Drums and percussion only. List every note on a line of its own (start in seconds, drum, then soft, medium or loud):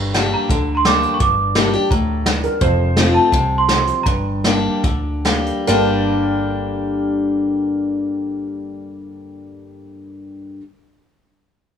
0.14 snare loud
0.14 closed hi-hat medium
0.49 kick medium
0.49 closed hi-hat soft
0.85 snare loud
0.85 closed hi-hat medium
1.03 closed hi-hat medium
1.20 kick loud
1.20 closed hi-hat medium
1.55 snare loud
1.55 closed hi-hat medium
1.91 kick medium
1.91 closed hi-hat medium
2.26 snare loud
2.26 closed hi-hat medium
2.43 closed hi-hat medium
2.61 kick loud
2.61 closed hi-hat medium
2.96 snare loud
2.96 closed hi-hat medium
3.32 kick loud
3.32 closed hi-hat medium
3.69 snare medium
3.69 closed hi-hat medium
3.87 closed hi-hat medium
4.06 kick loud
4.06 closed hi-hat medium
4.44 snare loud
4.44 closed hi-hat medium
4.84 kick medium
4.84 closed hi-hat medium
5.25 snare medium
5.25 closed hi-hat medium
5.46 closed hi-hat medium